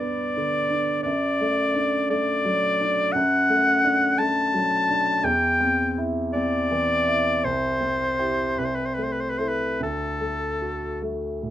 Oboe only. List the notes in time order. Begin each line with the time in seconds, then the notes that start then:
0.00 D5
1.03 D5
2.10 D5
3.12 F#5
4.18 A5
5.24 G5
6.34 D5
7.44 C5
8.59 B4
8.65 C5
8.75 B4
8.86 C5
8.94 B4
9.03 C5
9.12 B4
9.20 C5
9.30 B4
9.38 C5
9.48 B4
9.83 A4